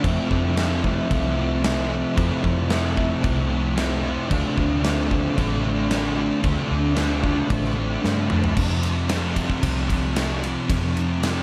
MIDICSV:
0, 0, Header, 1, 5, 480
1, 0, Start_track
1, 0, Tempo, 532860
1, 35, Time_signature, 4, 2, 24, 8
1, 10295, End_track
2, 0, Start_track
2, 0, Title_t, "Clean electric guitar"
2, 0, Program_c, 0, 27
2, 23, Note_on_c, 0, 53, 98
2, 29, Note_on_c, 0, 57, 94
2, 36, Note_on_c, 0, 60, 112
2, 46, Note_on_c, 0, 64, 103
2, 261, Note_off_c, 0, 64, 0
2, 264, Note_on_c, 0, 64, 72
2, 269, Note_off_c, 0, 60, 0
2, 272, Note_on_c, 0, 60, 66
2, 284, Note_off_c, 0, 57, 0
2, 288, Note_on_c, 0, 57, 55
2, 486, Note_off_c, 0, 53, 0
2, 490, Note_on_c, 0, 53, 75
2, 499, Note_off_c, 0, 57, 0
2, 503, Note_on_c, 0, 57, 79
2, 504, Note_off_c, 0, 60, 0
2, 508, Note_on_c, 0, 60, 79
2, 517, Note_off_c, 0, 64, 0
2, 521, Note_on_c, 0, 64, 80
2, 731, Note_off_c, 0, 64, 0
2, 735, Note_on_c, 0, 64, 75
2, 745, Note_off_c, 0, 60, 0
2, 749, Note_on_c, 0, 60, 66
2, 755, Note_off_c, 0, 57, 0
2, 759, Note_on_c, 0, 57, 70
2, 1457, Note_off_c, 0, 53, 0
2, 1460, Note_on_c, 0, 53, 87
2, 1464, Note_off_c, 0, 57, 0
2, 1468, Note_on_c, 0, 57, 90
2, 1473, Note_off_c, 0, 64, 0
2, 1476, Note_off_c, 0, 60, 0
2, 1480, Note_on_c, 0, 60, 95
2, 1484, Note_on_c, 0, 64, 96
2, 1679, Note_off_c, 0, 64, 0
2, 1690, Note_on_c, 0, 64, 69
2, 1706, Note_off_c, 0, 60, 0
2, 1710, Note_on_c, 0, 60, 58
2, 1717, Note_off_c, 0, 57, 0
2, 1720, Note_on_c, 0, 57, 53
2, 1936, Note_off_c, 0, 53, 0
2, 1939, Note_on_c, 0, 53, 100
2, 1945, Note_off_c, 0, 57, 0
2, 1949, Note_on_c, 0, 57, 92
2, 1955, Note_off_c, 0, 64, 0
2, 1957, Note_off_c, 0, 60, 0
2, 1960, Note_on_c, 0, 60, 100
2, 1966, Note_on_c, 0, 64, 100
2, 2172, Note_off_c, 0, 64, 0
2, 2183, Note_on_c, 0, 64, 72
2, 2197, Note_off_c, 0, 60, 0
2, 2201, Note_on_c, 0, 60, 67
2, 2208, Note_off_c, 0, 57, 0
2, 2212, Note_on_c, 0, 57, 58
2, 2420, Note_off_c, 0, 53, 0
2, 2424, Note_on_c, 0, 53, 77
2, 2435, Note_off_c, 0, 57, 0
2, 2439, Note_on_c, 0, 57, 74
2, 2440, Note_off_c, 0, 60, 0
2, 2440, Note_off_c, 0, 64, 0
2, 2443, Note_on_c, 0, 60, 85
2, 2451, Note_on_c, 0, 64, 95
2, 2651, Note_off_c, 0, 64, 0
2, 2662, Note_on_c, 0, 64, 79
2, 2674, Note_off_c, 0, 60, 0
2, 2677, Note_on_c, 0, 60, 71
2, 2689, Note_off_c, 0, 57, 0
2, 2693, Note_on_c, 0, 57, 66
2, 3376, Note_off_c, 0, 53, 0
2, 3380, Note_on_c, 0, 53, 90
2, 3389, Note_off_c, 0, 57, 0
2, 3392, Note_on_c, 0, 57, 90
2, 3394, Note_off_c, 0, 60, 0
2, 3398, Note_on_c, 0, 60, 94
2, 3401, Note_off_c, 0, 64, 0
2, 3412, Note_on_c, 0, 64, 91
2, 3614, Note_off_c, 0, 64, 0
2, 3625, Note_on_c, 0, 64, 75
2, 3638, Note_off_c, 0, 60, 0
2, 3641, Note_on_c, 0, 60, 60
2, 3650, Note_off_c, 0, 57, 0
2, 3653, Note_on_c, 0, 57, 61
2, 3856, Note_off_c, 0, 64, 0
2, 3863, Note_off_c, 0, 53, 0
2, 3867, Note_on_c, 0, 50, 99
2, 3872, Note_off_c, 0, 57, 0
2, 3876, Note_on_c, 0, 57, 97
2, 3882, Note_off_c, 0, 60, 0
2, 3886, Note_on_c, 0, 60, 108
2, 3896, Note_on_c, 0, 65, 114
2, 4111, Note_off_c, 0, 65, 0
2, 4114, Note_on_c, 0, 65, 70
2, 4128, Note_off_c, 0, 60, 0
2, 4132, Note_on_c, 0, 60, 60
2, 4137, Note_off_c, 0, 57, 0
2, 4141, Note_on_c, 0, 57, 60
2, 4346, Note_off_c, 0, 50, 0
2, 4350, Note_on_c, 0, 50, 69
2, 4359, Note_off_c, 0, 57, 0
2, 4363, Note_on_c, 0, 57, 77
2, 4370, Note_off_c, 0, 60, 0
2, 4373, Note_on_c, 0, 60, 88
2, 4375, Note_off_c, 0, 65, 0
2, 4379, Note_on_c, 0, 65, 90
2, 4596, Note_off_c, 0, 65, 0
2, 4599, Note_on_c, 0, 65, 82
2, 4611, Note_off_c, 0, 60, 0
2, 4614, Note_on_c, 0, 60, 70
2, 4620, Note_off_c, 0, 57, 0
2, 4623, Note_on_c, 0, 57, 71
2, 5310, Note_off_c, 0, 50, 0
2, 5314, Note_on_c, 0, 50, 97
2, 5317, Note_off_c, 0, 57, 0
2, 5321, Note_on_c, 0, 57, 94
2, 5327, Note_off_c, 0, 60, 0
2, 5330, Note_on_c, 0, 60, 87
2, 5334, Note_off_c, 0, 65, 0
2, 5338, Note_on_c, 0, 65, 105
2, 5545, Note_off_c, 0, 65, 0
2, 5549, Note_on_c, 0, 65, 75
2, 5558, Note_off_c, 0, 60, 0
2, 5562, Note_on_c, 0, 60, 67
2, 5572, Note_off_c, 0, 57, 0
2, 5576, Note_on_c, 0, 57, 58
2, 5779, Note_off_c, 0, 50, 0
2, 5788, Note_off_c, 0, 57, 0
2, 5789, Note_on_c, 0, 50, 101
2, 5796, Note_off_c, 0, 60, 0
2, 5799, Note_on_c, 0, 57, 104
2, 5806, Note_off_c, 0, 65, 0
2, 5807, Note_on_c, 0, 60, 107
2, 5817, Note_on_c, 0, 65, 106
2, 6019, Note_off_c, 0, 65, 0
2, 6030, Note_on_c, 0, 65, 70
2, 6032, Note_off_c, 0, 60, 0
2, 6042, Note_on_c, 0, 60, 74
2, 6045, Note_off_c, 0, 57, 0
2, 6056, Note_on_c, 0, 57, 62
2, 6264, Note_off_c, 0, 50, 0
2, 6272, Note_off_c, 0, 57, 0
2, 6275, Note_off_c, 0, 60, 0
2, 6275, Note_on_c, 0, 50, 74
2, 6282, Note_on_c, 0, 57, 74
2, 6286, Note_on_c, 0, 60, 75
2, 6289, Note_off_c, 0, 65, 0
2, 6299, Note_on_c, 0, 65, 85
2, 6494, Note_off_c, 0, 65, 0
2, 6505, Note_on_c, 0, 65, 81
2, 6506, Note_off_c, 0, 60, 0
2, 6517, Note_on_c, 0, 60, 69
2, 6520, Note_off_c, 0, 57, 0
2, 6531, Note_on_c, 0, 57, 63
2, 6754, Note_off_c, 0, 50, 0
2, 7221, Note_off_c, 0, 57, 0
2, 7223, Note_on_c, 0, 50, 81
2, 7232, Note_off_c, 0, 60, 0
2, 7232, Note_on_c, 0, 57, 98
2, 7241, Note_off_c, 0, 65, 0
2, 7242, Note_on_c, 0, 60, 92
2, 7251, Note_on_c, 0, 65, 94
2, 7448, Note_off_c, 0, 65, 0
2, 7459, Note_on_c, 0, 65, 71
2, 7465, Note_off_c, 0, 60, 0
2, 7472, Note_off_c, 0, 57, 0
2, 7476, Note_on_c, 0, 60, 67
2, 7482, Note_on_c, 0, 57, 59
2, 7692, Note_off_c, 0, 65, 0
2, 7694, Note_off_c, 0, 50, 0
2, 7701, Note_off_c, 0, 60, 0
2, 7704, Note_off_c, 0, 57, 0
2, 10295, End_track
3, 0, Start_track
3, 0, Title_t, "Distorted electric guitar"
3, 0, Program_c, 1, 30
3, 29, Note_on_c, 1, 41, 89
3, 47, Note_on_c, 1, 48, 85
3, 58, Note_on_c, 1, 53, 104
3, 274, Note_off_c, 1, 53, 0
3, 278, Note_on_c, 1, 53, 79
3, 300, Note_off_c, 1, 48, 0
3, 311, Note_on_c, 1, 48, 55
3, 505, Note_off_c, 1, 41, 0
3, 509, Note_on_c, 1, 41, 106
3, 518, Note_off_c, 1, 48, 0
3, 529, Note_on_c, 1, 48, 109
3, 542, Note_off_c, 1, 53, 0
3, 546, Note_on_c, 1, 53, 110
3, 748, Note_off_c, 1, 53, 0
3, 752, Note_on_c, 1, 53, 67
3, 770, Note_off_c, 1, 48, 0
3, 781, Note_on_c, 1, 48, 62
3, 973, Note_off_c, 1, 41, 0
3, 976, Note_on_c, 1, 41, 79
3, 982, Note_off_c, 1, 48, 0
3, 993, Note_on_c, 1, 48, 89
3, 1003, Note_off_c, 1, 53, 0
3, 1006, Note_on_c, 1, 53, 93
3, 1220, Note_off_c, 1, 53, 0
3, 1223, Note_on_c, 1, 53, 87
3, 1227, Note_off_c, 1, 48, 0
3, 1238, Note_on_c, 1, 48, 83
3, 1246, Note_off_c, 1, 41, 0
3, 1257, Note_on_c, 1, 41, 79
3, 1459, Note_off_c, 1, 41, 0
3, 1469, Note_on_c, 1, 41, 92
3, 1476, Note_off_c, 1, 48, 0
3, 1487, Note_on_c, 1, 48, 98
3, 1491, Note_off_c, 1, 53, 0
3, 1494, Note_on_c, 1, 53, 102
3, 1706, Note_off_c, 1, 53, 0
3, 1709, Note_on_c, 1, 53, 76
3, 1727, Note_off_c, 1, 48, 0
3, 1737, Note_on_c, 1, 48, 60
3, 1924, Note_off_c, 1, 41, 0
3, 1935, Note_on_c, 1, 41, 91
3, 1940, Note_off_c, 1, 48, 0
3, 1951, Note_on_c, 1, 48, 86
3, 1959, Note_off_c, 1, 53, 0
3, 1963, Note_on_c, 1, 53, 100
3, 2177, Note_off_c, 1, 53, 0
3, 2180, Note_on_c, 1, 53, 69
3, 2198, Note_off_c, 1, 48, 0
3, 2209, Note_on_c, 1, 48, 67
3, 2414, Note_off_c, 1, 41, 0
3, 2425, Note_on_c, 1, 41, 97
3, 2426, Note_off_c, 1, 48, 0
3, 2437, Note_on_c, 1, 48, 95
3, 2445, Note_off_c, 1, 53, 0
3, 2448, Note_on_c, 1, 53, 108
3, 2660, Note_off_c, 1, 53, 0
3, 2663, Note_on_c, 1, 53, 84
3, 2685, Note_off_c, 1, 48, 0
3, 2696, Note_on_c, 1, 48, 59
3, 2891, Note_off_c, 1, 41, 0
3, 2902, Note_on_c, 1, 41, 74
3, 2907, Note_off_c, 1, 48, 0
3, 2918, Note_on_c, 1, 48, 85
3, 2928, Note_off_c, 1, 53, 0
3, 2931, Note_on_c, 1, 53, 92
3, 3131, Note_off_c, 1, 53, 0
3, 3135, Note_on_c, 1, 53, 89
3, 3143, Note_off_c, 1, 48, 0
3, 3154, Note_on_c, 1, 48, 86
3, 3157, Note_off_c, 1, 41, 0
3, 3167, Note_on_c, 1, 41, 78
3, 3366, Note_off_c, 1, 41, 0
3, 3377, Note_on_c, 1, 41, 89
3, 3384, Note_off_c, 1, 48, 0
3, 3395, Note_on_c, 1, 48, 91
3, 3401, Note_off_c, 1, 53, 0
3, 3405, Note_on_c, 1, 53, 97
3, 3626, Note_off_c, 1, 53, 0
3, 3630, Note_on_c, 1, 53, 74
3, 3646, Note_off_c, 1, 48, 0
3, 3657, Note_on_c, 1, 48, 62
3, 3852, Note_off_c, 1, 41, 0
3, 3854, Note_off_c, 1, 48, 0
3, 3857, Note_on_c, 1, 50, 89
3, 3871, Note_off_c, 1, 53, 0
3, 3875, Note_on_c, 1, 57, 104
3, 3889, Note_on_c, 1, 62, 101
3, 4100, Note_off_c, 1, 62, 0
3, 4104, Note_on_c, 1, 62, 73
3, 4128, Note_off_c, 1, 57, 0
3, 4132, Note_on_c, 1, 57, 56
3, 4339, Note_off_c, 1, 50, 0
3, 4343, Note_on_c, 1, 50, 97
3, 4357, Note_off_c, 1, 57, 0
3, 4361, Note_on_c, 1, 57, 111
3, 4368, Note_off_c, 1, 62, 0
3, 4372, Note_on_c, 1, 62, 114
3, 4575, Note_off_c, 1, 62, 0
3, 4578, Note_on_c, 1, 62, 75
3, 4609, Note_off_c, 1, 57, 0
3, 4613, Note_on_c, 1, 57, 63
3, 4828, Note_off_c, 1, 50, 0
3, 4832, Note_on_c, 1, 50, 72
3, 4849, Note_off_c, 1, 57, 0
3, 4852, Note_on_c, 1, 57, 87
3, 4854, Note_off_c, 1, 62, 0
3, 4865, Note_on_c, 1, 62, 86
3, 5057, Note_off_c, 1, 62, 0
3, 5068, Note_on_c, 1, 62, 94
3, 5082, Note_off_c, 1, 57, 0
3, 5086, Note_on_c, 1, 57, 83
3, 5089, Note_off_c, 1, 50, 0
3, 5100, Note_on_c, 1, 50, 68
3, 5300, Note_off_c, 1, 50, 0
3, 5311, Note_on_c, 1, 50, 91
3, 5324, Note_off_c, 1, 57, 0
3, 5328, Note_on_c, 1, 57, 96
3, 5331, Note_off_c, 1, 62, 0
3, 5341, Note_on_c, 1, 62, 92
3, 5532, Note_off_c, 1, 62, 0
3, 5542, Note_on_c, 1, 62, 75
3, 5574, Note_off_c, 1, 57, 0
3, 5577, Note_on_c, 1, 57, 64
3, 5761, Note_off_c, 1, 50, 0
3, 5772, Note_on_c, 1, 50, 95
3, 5780, Note_off_c, 1, 57, 0
3, 5791, Note_on_c, 1, 57, 98
3, 5796, Note_off_c, 1, 62, 0
3, 5806, Note_on_c, 1, 62, 106
3, 6008, Note_off_c, 1, 62, 0
3, 6019, Note_on_c, 1, 62, 77
3, 6036, Note_off_c, 1, 57, 0
3, 6047, Note_on_c, 1, 57, 58
3, 6243, Note_off_c, 1, 50, 0
3, 6253, Note_on_c, 1, 50, 95
3, 6262, Note_off_c, 1, 57, 0
3, 6272, Note_on_c, 1, 57, 107
3, 6277, Note_off_c, 1, 62, 0
3, 6288, Note_on_c, 1, 62, 122
3, 6491, Note_off_c, 1, 62, 0
3, 6502, Note_on_c, 1, 62, 74
3, 6525, Note_off_c, 1, 57, 0
3, 6536, Note_on_c, 1, 57, 62
3, 6728, Note_off_c, 1, 50, 0
3, 6739, Note_on_c, 1, 50, 70
3, 6751, Note_off_c, 1, 57, 0
3, 6761, Note_off_c, 1, 62, 0
3, 6762, Note_on_c, 1, 57, 91
3, 6771, Note_on_c, 1, 62, 92
3, 6975, Note_off_c, 1, 62, 0
3, 6986, Note_on_c, 1, 62, 93
3, 6991, Note_off_c, 1, 57, 0
3, 7001, Note_off_c, 1, 50, 0
3, 7002, Note_on_c, 1, 57, 85
3, 7012, Note_on_c, 1, 50, 73
3, 7218, Note_off_c, 1, 50, 0
3, 7229, Note_on_c, 1, 50, 80
3, 7231, Note_off_c, 1, 57, 0
3, 7242, Note_on_c, 1, 57, 87
3, 7248, Note_off_c, 1, 62, 0
3, 7259, Note_on_c, 1, 62, 87
3, 7453, Note_off_c, 1, 62, 0
3, 7464, Note_on_c, 1, 62, 73
3, 7485, Note_off_c, 1, 57, 0
3, 7496, Note_on_c, 1, 57, 60
3, 7695, Note_off_c, 1, 62, 0
3, 7697, Note_off_c, 1, 50, 0
3, 7708, Note_on_c, 1, 41, 83
3, 7711, Note_off_c, 1, 57, 0
3, 7730, Note_on_c, 1, 48, 100
3, 7735, Note_on_c, 1, 53, 93
3, 8181, Note_off_c, 1, 41, 0
3, 8185, Note_on_c, 1, 41, 75
3, 8193, Note_off_c, 1, 48, 0
3, 8204, Note_on_c, 1, 48, 77
3, 8213, Note_off_c, 1, 53, 0
3, 8216, Note_on_c, 1, 53, 79
3, 8648, Note_off_c, 1, 41, 0
3, 8659, Note_on_c, 1, 41, 95
3, 8668, Note_off_c, 1, 48, 0
3, 8679, Note_on_c, 1, 48, 98
3, 8685, Note_off_c, 1, 53, 0
3, 8688, Note_on_c, 1, 53, 101
3, 8899, Note_off_c, 1, 53, 0
3, 8903, Note_on_c, 1, 53, 68
3, 8925, Note_off_c, 1, 48, 0
3, 8936, Note_on_c, 1, 48, 56
3, 9147, Note_off_c, 1, 41, 0
3, 9378, Note_off_c, 1, 53, 0
3, 9382, Note_on_c, 1, 53, 72
3, 9402, Note_off_c, 1, 48, 0
3, 9413, Note_on_c, 1, 48, 64
3, 9625, Note_on_c, 1, 41, 83
3, 9634, Note_off_c, 1, 48, 0
3, 9644, Note_on_c, 1, 48, 102
3, 9651, Note_off_c, 1, 53, 0
3, 9654, Note_on_c, 1, 53, 103
3, 10090, Note_off_c, 1, 41, 0
3, 10100, Note_on_c, 1, 41, 79
3, 10110, Note_off_c, 1, 48, 0
3, 10120, Note_on_c, 1, 48, 80
3, 10129, Note_off_c, 1, 53, 0
3, 10133, Note_on_c, 1, 53, 79
3, 10295, Note_off_c, 1, 41, 0
3, 10295, Note_off_c, 1, 48, 0
3, 10295, Note_off_c, 1, 53, 0
3, 10295, End_track
4, 0, Start_track
4, 0, Title_t, "Fingered electric bass"
4, 0, Program_c, 2, 33
4, 39, Note_on_c, 2, 41, 96
4, 141, Note_off_c, 2, 41, 0
4, 277, Note_on_c, 2, 41, 96
4, 899, Note_off_c, 2, 41, 0
4, 999, Note_on_c, 2, 36, 95
4, 1827, Note_off_c, 2, 36, 0
4, 1963, Note_on_c, 2, 41, 97
4, 2064, Note_off_c, 2, 41, 0
4, 2197, Note_on_c, 2, 41, 106
4, 2819, Note_off_c, 2, 41, 0
4, 2922, Note_on_c, 2, 36, 100
4, 3748, Note_off_c, 2, 36, 0
4, 3882, Note_on_c, 2, 38, 101
4, 3983, Note_off_c, 2, 38, 0
4, 4123, Note_on_c, 2, 38, 110
4, 4742, Note_off_c, 2, 38, 0
4, 4844, Note_on_c, 2, 33, 90
4, 5670, Note_off_c, 2, 33, 0
4, 5798, Note_on_c, 2, 38, 101
4, 5900, Note_off_c, 2, 38, 0
4, 6044, Note_on_c, 2, 38, 104
4, 6662, Note_off_c, 2, 38, 0
4, 6759, Note_on_c, 2, 33, 93
4, 7172, Note_off_c, 2, 33, 0
4, 7248, Note_on_c, 2, 43, 76
4, 7458, Note_off_c, 2, 43, 0
4, 7491, Note_on_c, 2, 41, 83
4, 7700, Note_off_c, 2, 41, 0
4, 7718, Note_on_c, 2, 41, 95
4, 8546, Note_off_c, 2, 41, 0
4, 8675, Note_on_c, 2, 36, 86
4, 9505, Note_off_c, 2, 36, 0
4, 9640, Note_on_c, 2, 41, 84
4, 10295, Note_off_c, 2, 41, 0
4, 10295, End_track
5, 0, Start_track
5, 0, Title_t, "Drums"
5, 38, Note_on_c, 9, 36, 115
5, 38, Note_on_c, 9, 49, 69
5, 128, Note_off_c, 9, 36, 0
5, 128, Note_off_c, 9, 49, 0
5, 278, Note_on_c, 9, 36, 78
5, 368, Note_off_c, 9, 36, 0
5, 515, Note_on_c, 9, 49, 67
5, 518, Note_on_c, 9, 38, 117
5, 605, Note_off_c, 9, 49, 0
5, 608, Note_off_c, 9, 38, 0
5, 758, Note_on_c, 9, 36, 82
5, 848, Note_off_c, 9, 36, 0
5, 999, Note_on_c, 9, 36, 122
5, 1001, Note_on_c, 9, 49, 66
5, 1089, Note_off_c, 9, 36, 0
5, 1091, Note_off_c, 9, 49, 0
5, 1478, Note_on_c, 9, 49, 67
5, 1482, Note_on_c, 9, 38, 127
5, 1568, Note_off_c, 9, 49, 0
5, 1572, Note_off_c, 9, 38, 0
5, 1960, Note_on_c, 9, 36, 126
5, 1961, Note_on_c, 9, 49, 65
5, 2050, Note_off_c, 9, 36, 0
5, 2051, Note_off_c, 9, 49, 0
5, 2198, Note_on_c, 9, 36, 80
5, 2288, Note_off_c, 9, 36, 0
5, 2433, Note_on_c, 9, 49, 59
5, 2437, Note_on_c, 9, 38, 120
5, 2523, Note_off_c, 9, 49, 0
5, 2527, Note_off_c, 9, 38, 0
5, 2678, Note_on_c, 9, 36, 89
5, 2769, Note_off_c, 9, 36, 0
5, 2917, Note_on_c, 9, 49, 62
5, 2920, Note_on_c, 9, 36, 114
5, 3007, Note_off_c, 9, 49, 0
5, 3010, Note_off_c, 9, 36, 0
5, 3399, Note_on_c, 9, 49, 70
5, 3403, Note_on_c, 9, 38, 120
5, 3489, Note_off_c, 9, 49, 0
5, 3493, Note_off_c, 9, 38, 0
5, 3880, Note_on_c, 9, 49, 69
5, 3882, Note_on_c, 9, 36, 122
5, 3970, Note_off_c, 9, 49, 0
5, 3972, Note_off_c, 9, 36, 0
5, 4122, Note_on_c, 9, 36, 83
5, 4212, Note_off_c, 9, 36, 0
5, 4362, Note_on_c, 9, 49, 64
5, 4365, Note_on_c, 9, 38, 110
5, 4452, Note_off_c, 9, 49, 0
5, 4456, Note_off_c, 9, 38, 0
5, 4605, Note_on_c, 9, 36, 91
5, 4695, Note_off_c, 9, 36, 0
5, 4846, Note_on_c, 9, 36, 123
5, 4849, Note_on_c, 9, 49, 71
5, 4936, Note_off_c, 9, 36, 0
5, 4939, Note_off_c, 9, 49, 0
5, 5320, Note_on_c, 9, 49, 69
5, 5324, Note_on_c, 9, 38, 122
5, 5410, Note_off_c, 9, 49, 0
5, 5414, Note_off_c, 9, 38, 0
5, 5799, Note_on_c, 9, 49, 62
5, 5801, Note_on_c, 9, 36, 116
5, 5889, Note_off_c, 9, 49, 0
5, 5891, Note_off_c, 9, 36, 0
5, 6272, Note_on_c, 9, 49, 56
5, 6276, Note_on_c, 9, 38, 111
5, 6363, Note_off_c, 9, 49, 0
5, 6366, Note_off_c, 9, 38, 0
5, 6519, Note_on_c, 9, 36, 80
5, 6609, Note_off_c, 9, 36, 0
5, 6759, Note_on_c, 9, 36, 126
5, 6759, Note_on_c, 9, 49, 63
5, 6849, Note_off_c, 9, 36, 0
5, 6849, Note_off_c, 9, 49, 0
5, 6886, Note_on_c, 9, 38, 32
5, 6976, Note_off_c, 9, 38, 0
5, 7247, Note_on_c, 9, 38, 72
5, 7337, Note_off_c, 9, 38, 0
5, 7358, Note_on_c, 9, 48, 66
5, 7448, Note_off_c, 9, 48, 0
5, 7476, Note_on_c, 9, 45, 95
5, 7566, Note_off_c, 9, 45, 0
5, 7600, Note_on_c, 9, 43, 93
5, 7690, Note_off_c, 9, 43, 0
5, 7718, Note_on_c, 9, 36, 120
5, 7718, Note_on_c, 9, 57, 109
5, 7808, Note_off_c, 9, 36, 0
5, 7808, Note_off_c, 9, 57, 0
5, 7956, Note_on_c, 9, 51, 79
5, 8046, Note_off_c, 9, 51, 0
5, 8191, Note_on_c, 9, 51, 99
5, 8195, Note_on_c, 9, 38, 117
5, 8281, Note_off_c, 9, 51, 0
5, 8285, Note_off_c, 9, 38, 0
5, 8434, Note_on_c, 9, 36, 78
5, 8434, Note_on_c, 9, 51, 75
5, 8524, Note_off_c, 9, 36, 0
5, 8524, Note_off_c, 9, 51, 0
5, 8555, Note_on_c, 9, 36, 80
5, 8645, Note_off_c, 9, 36, 0
5, 8674, Note_on_c, 9, 36, 94
5, 8674, Note_on_c, 9, 51, 99
5, 8764, Note_off_c, 9, 36, 0
5, 8765, Note_off_c, 9, 51, 0
5, 8914, Note_on_c, 9, 36, 81
5, 8918, Note_on_c, 9, 51, 67
5, 9004, Note_off_c, 9, 36, 0
5, 9008, Note_off_c, 9, 51, 0
5, 9154, Note_on_c, 9, 51, 100
5, 9158, Note_on_c, 9, 38, 118
5, 9244, Note_off_c, 9, 51, 0
5, 9248, Note_off_c, 9, 38, 0
5, 9400, Note_on_c, 9, 51, 67
5, 9490, Note_off_c, 9, 51, 0
5, 9635, Note_on_c, 9, 36, 120
5, 9636, Note_on_c, 9, 51, 99
5, 9725, Note_off_c, 9, 36, 0
5, 9726, Note_off_c, 9, 51, 0
5, 9879, Note_on_c, 9, 51, 62
5, 9970, Note_off_c, 9, 51, 0
5, 10117, Note_on_c, 9, 51, 88
5, 10121, Note_on_c, 9, 38, 119
5, 10207, Note_off_c, 9, 51, 0
5, 10211, Note_off_c, 9, 38, 0
5, 10295, End_track
0, 0, End_of_file